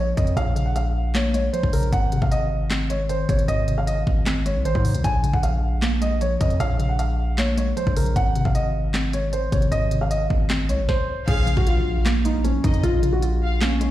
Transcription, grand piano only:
0, 0, Header, 1, 2, 480
1, 0, Start_track
1, 0, Key_signature, -5, "minor"
1, 0, Tempo, 389610
1, 452, Time_signature, 4, 2, 24, 8
1, 17135, End_track
2, 0, Start_track
2, 0, Title_t, "Grand piano"
2, 0, Program_c, 0, 0
2, 0, Note_on_c, 0, 73, 92
2, 188, Note_off_c, 0, 73, 0
2, 214, Note_on_c, 0, 75, 76
2, 429, Note_off_c, 0, 75, 0
2, 453, Note_on_c, 0, 77, 109
2, 791, Note_off_c, 0, 77, 0
2, 810, Note_on_c, 0, 78, 83
2, 919, Note_off_c, 0, 78, 0
2, 932, Note_on_c, 0, 77, 84
2, 1383, Note_off_c, 0, 77, 0
2, 1412, Note_on_c, 0, 73, 86
2, 1627, Note_off_c, 0, 73, 0
2, 1652, Note_on_c, 0, 73, 81
2, 1867, Note_off_c, 0, 73, 0
2, 1888, Note_on_c, 0, 72, 79
2, 2105, Note_off_c, 0, 72, 0
2, 2133, Note_on_c, 0, 70, 81
2, 2348, Note_off_c, 0, 70, 0
2, 2372, Note_on_c, 0, 78, 107
2, 2711, Note_off_c, 0, 78, 0
2, 2733, Note_on_c, 0, 77, 76
2, 2841, Note_off_c, 0, 77, 0
2, 2851, Note_on_c, 0, 75, 90
2, 3303, Note_off_c, 0, 75, 0
2, 3572, Note_on_c, 0, 73, 80
2, 3787, Note_off_c, 0, 73, 0
2, 3812, Note_on_c, 0, 72, 75
2, 4028, Note_off_c, 0, 72, 0
2, 4054, Note_on_c, 0, 73, 83
2, 4268, Note_off_c, 0, 73, 0
2, 4288, Note_on_c, 0, 75, 103
2, 4629, Note_off_c, 0, 75, 0
2, 4654, Note_on_c, 0, 77, 79
2, 4761, Note_off_c, 0, 77, 0
2, 4770, Note_on_c, 0, 75, 87
2, 5448, Note_off_c, 0, 75, 0
2, 5492, Note_on_c, 0, 73, 77
2, 5707, Note_off_c, 0, 73, 0
2, 5732, Note_on_c, 0, 72, 91
2, 6184, Note_off_c, 0, 72, 0
2, 6213, Note_on_c, 0, 80, 106
2, 6551, Note_off_c, 0, 80, 0
2, 6573, Note_on_c, 0, 78, 79
2, 6680, Note_off_c, 0, 78, 0
2, 6693, Note_on_c, 0, 77, 79
2, 7144, Note_off_c, 0, 77, 0
2, 7412, Note_on_c, 0, 75, 85
2, 7627, Note_off_c, 0, 75, 0
2, 7654, Note_on_c, 0, 73, 91
2, 7869, Note_off_c, 0, 73, 0
2, 7895, Note_on_c, 0, 75, 80
2, 8109, Note_off_c, 0, 75, 0
2, 8133, Note_on_c, 0, 77, 113
2, 8471, Note_off_c, 0, 77, 0
2, 8490, Note_on_c, 0, 78, 80
2, 8599, Note_off_c, 0, 78, 0
2, 8612, Note_on_c, 0, 77, 84
2, 9063, Note_off_c, 0, 77, 0
2, 9092, Note_on_c, 0, 73, 88
2, 9307, Note_off_c, 0, 73, 0
2, 9332, Note_on_c, 0, 73, 80
2, 9548, Note_off_c, 0, 73, 0
2, 9569, Note_on_c, 0, 72, 82
2, 9786, Note_off_c, 0, 72, 0
2, 9813, Note_on_c, 0, 70, 82
2, 10028, Note_off_c, 0, 70, 0
2, 10052, Note_on_c, 0, 78, 110
2, 10391, Note_off_c, 0, 78, 0
2, 10414, Note_on_c, 0, 77, 77
2, 10521, Note_off_c, 0, 77, 0
2, 10533, Note_on_c, 0, 75, 89
2, 10984, Note_off_c, 0, 75, 0
2, 11253, Note_on_c, 0, 73, 83
2, 11468, Note_off_c, 0, 73, 0
2, 11493, Note_on_c, 0, 72, 75
2, 11708, Note_off_c, 0, 72, 0
2, 11733, Note_on_c, 0, 73, 84
2, 11948, Note_off_c, 0, 73, 0
2, 11970, Note_on_c, 0, 75, 102
2, 12309, Note_off_c, 0, 75, 0
2, 12336, Note_on_c, 0, 77, 83
2, 12442, Note_off_c, 0, 77, 0
2, 12451, Note_on_c, 0, 75, 89
2, 13129, Note_off_c, 0, 75, 0
2, 13171, Note_on_c, 0, 73, 79
2, 13387, Note_off_c, 0, 73, 0
2, 13412, Note_on_c, 0, 72, 94
2, 13863, Note_off_c, 0, 72, 0
2, 13893, Note_on_c, 0, 68, 107
2, 14231, Note_off_c, 0, 68, 0
2, 14253, Note_on_c, 0, 66, 84
2, 14360, Note_off_c, 0, 66, 0
2, 14373, Note_on_c, 0, 65, 79
2, 14824, Note_off_c, 0, 65, 0
2, 15091, Note_on_c, 0, 63, 85
2, 15307, Note_off_c, 0, 63, 0
2, 15333, Note_on_c, 0, 61, 92
2, 15548, Note_off_c, 0, 61, 0
2, 15575, Note_on_c, 0, 63, 83
2, 15789, Note_off_c, 0, 63, 0
2, 15813, Note_on_c, 0, 65, 115
2, 16152, Note_off_c, 0, 65, 0
2, 16171, Note_on_c, 0, 66, 81
2, 16279, Note_off_c, 0, 66, 0
2, 16293, Note_on_c, 0, 65, 84
2, 16744, Note_off_c, 0, 65, 0
2, 16773, Note_on_c, 0, 61, 89
2, 16988, Note_off_c, 0, 61, 0
2, 17013, Note_on_c, 0, 61, 84
2, 17135, Note_off_c, 0, 61, 0
2, 17135, End_track
0, 0, End_of_file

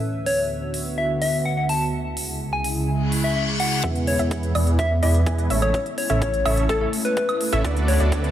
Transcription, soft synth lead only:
0, 0, Header, 1, 2, 480
1, 0, Start_track
1, 0, Tempo, 476190
1, 26, Time_signature, 4, 2, 24, 8
1, 8377, End_track
2, 0, Start_track
2, 0, Title_t, "Soft synth lead"
2, 0, Program_c, 0, 80
2, 266, Note_on_c, 0, 73, 89
2, 409, Note_off_c, 0, 73, 0
2, 985, Note_on_c, 0, 76, 87
2, 1129, Note_off_c, 0, 76, 0
2, 1225, Note_on_c, 0, 76, 91
2, 1369, Note_off_c, 0, 76, 0
2, 1466, Note_on_c, 0, 78, 89
2, 1543, Note_off_c, 0, 78, 0
2, 1586, Note_on_c, 0, 78, 74
2, 1663, Note_off_c, 0, 78, 0
2, 1707, Note_on_c, 0, 81, 90
2, 1850, Note_off_c, 0, 81, 0
2, 2547, Note_on_c, 0, 80, 94
2, 2690, Note_off_c, 0, 80, 0
2, 3267, Note_on_c, 0, 76, 86
2, 3343, Note_off_c, 0, 76, 0
2, 3386, Note_on_c, 0, 76, 70
2, 3463, Note_off_c, 0, 76, 0
2, 3627, Note_on_c, 0, 78, 91
2, 3867, Note_off_c, 0, 78, 0
2, 4108, Note_on_c, 0, 73, 86
2, 4250, Note_off_c, 0, 73, 0
2, 4828, Note_on_c, 0, 76, 89
2, 4970, Note_off_c, 0, 76, 0
2, 5067, Note_on_c, 0, 76, 91
2, 5210, Note_off_c, 0, 76, 0
2, 5667, Note_on_c, 0, 73, 89
2, 5810, Note_off_c, 0, 73, 0
2, 6026, Note_on_c, 0, 73, 97
2, 6698, Note_off_c, 0, 73, 0
2, 6745, Note_on_c, 0, 69, 86
2, 6822, Note_off_c, 0, 69, 0
2, 6866, Note_on_c, 0, 69, 78
2, 6943, Note_off_c, 0, 69, 0
2, 7105, Note_on_c, 0, 71, 94
2, 7586, Note_off_c, 0, 71, 0
2, 7944, Note_on_c, 0, 73, 84
2, 8088, Note_off_c, 0, 73, 0
2, 8377, End_track
0, 0, End_of_file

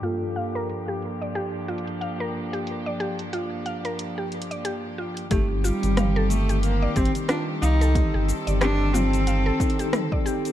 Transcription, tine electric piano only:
0, 0, Header, 1, 2, 480
1, 0, Start_track
1, 0, Tempo, 659341
1, 26, Time_signature, 4, 2, 24, 8
1, 7659, End_track
2, 0, Start_track
2, 0, Title_t, "Tine electric piano"
2, 0, Program_c, 0, 4
2, 0, Control_c, 0, 64, 127
2, 11, Note_on_c, 0, 43, 65
2, 22, Note_on_c, 0, 58, 59
2, 29, Note_on_c, 0, 65, 63
2, 36, Control_c, 0, 64, 0
2, 41, Note_on_c, 0, 69, 72
2, 160, Control_c, 0, 64, 127
2, 3834, Note_off_c, 0, 43, 0
2, 3840, Note_off_c, 0, 58, 0
2, 3844, Note_off_c, 0, 65, 0
2, 3849, Note_off_c, 0, 69, 0
2, 3859, Note_on_c, 0, 60, 76
2, 3865, Note_on_c, 0, 63, 69
2, 3873, Note_on_c, 0, 67, 81
2, 3876, Control_c, 0, 64, 0
2, 3991, Control_c, 0, 64, 127
2, 4208, Note_off_c, 0, 60, 0
2, 4211, Note_off_c, 0, 63, 0
2, 4215, Note_off_c, 0, 67, 0
2, 4231, Note_on_c, 0, 60, 72
2, 4246, Note_on_c, 0, 51, 70
2, 4260, Note_on_c, 0, 67, 82
2, 5755, Note_off_c, 0, 60, 0
2, 5762, Note_off_c, 0, 51, 0
2, 5769, Note_off_c, 0, 67, 0
2, 5779, Note_on_c, 0, 60, 70
2, 5786, Note_on_c, 0, 63, 62
2, 5794, Note_on_c, 0, 67, 80
2, 6128, Note_off_c, 0, 60, 0
2, 6132, Note_off_c, 0, 63, 0
2, 6136, Note_off_c, 0, 67, 0
2, 6156, Note_on_c, 0, 60, 70
2, 6170, Note_on_c, 0, 51, 68
2, 6183, Note_on_c, 0, 67, 80
2, 6961, Note_off_c, 0, 60, 0
2, 6968, Note_off_c, 0, 51, 0
2, 6975, Note_off_c, 0, 67, 0
2, 6984, Note_on_c, 0, 60, 104
2, 6991, Note_on_c, 0, 63, 105
2, 6998, Note_on_c, 0, 69, 120
2, 7441, Note_off_c, 0, 60, 0
2, 7444, Note_off_c, 0, 63, 0
2, 7448, Note_off_c, 0, 69, 0
2, 7463, Note_on_c, 0, 60, 84
2, 7471, Note_on_c, 0, 63, 74
2, 7478, Note_on_c, 0, 67, 97
2, 7659, Note_off_c, 0, 60, 0
2, 7659, Note_off_c, 0, 63, 0
2, 7659, Note_off_c, 0, 67, 0
2, 7659, End_track
0, 0, End_of_file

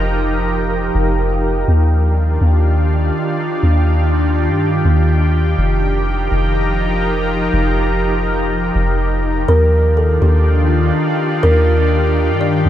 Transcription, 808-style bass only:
0, 0, Header, 1, 2, 480
1, 0, Start_track
1, 0, Key_signature, -3, "major"
1, 0, Tempo, 487805
1, 1652, Time_signature, 4, 2, 24, 8
1, 12491, End_track
2, 0, Start_track
2, 0, Title_t, "808-style bass"
2, 0, Program_c, 0, 38
2, 0, Note_on_c, 0, 29, 107
2, 893, Note_off_c, 0, 29, 0
2, 933, Note_on_c, 0, 29, 109
2, 1624, Note_off_c, 0, 29, 0
2, 1653, Note_on_c, 0, 39, 112
2, 2344, Note_off_c, 0, 39, 0
2, 2373, Note_on_c, 0, 39, 98
2, 3064, Note_off_c, 0, 39, 0
2, 3573, Note_on_c, 0, 39, 105
2, 4413, Note_on_c, 0, 43, 98
2, 4427, Note_off_c, 0, 39, 0
2, 4754, Note_off_c, 0, 43, 0
2, 4772, Note_on_c, 0, 39, 107
2, 5463, Note_off_c, 0, 39, 0
2, 5492, Note_on_c, 0, 29, 115
2, 6183, Note_off_c, 0, 29, 0
2, 6212, Note_on_c, 0, 29, 100
2, 7373, Note_off_c, 0, 29, 0
2, 7412, Note_on_c, 0, 29, 108
2, 8573, Note_off_c, 0, 29, 0
2, 8612, Note_on_c, 0, 29, 106
2, 9303, Note_off_c, 0, 29, 0
2, 9332, Note_on_c, 0, 39, 111
2, 10023, Note_off_c, 0, 39, 0
2, 10052, Note_on_c, 0, 39, 100
2, 10744, Note_off_c, 0, 39, 0
2, 11253, Note_on_c, 0, 39, 102
2, 12093, Note_on_c, 0, 43, 96
2, 12108, Note_off_c, 0, 39, 0
2, 12435, Note_off_c, 0, 43, 0
2, 12453, Note_on_c, 0, 39, 105
2, 12491, Note_off_c, 0, 39, 0
2, 12491, End_track
0, 0, End_of_file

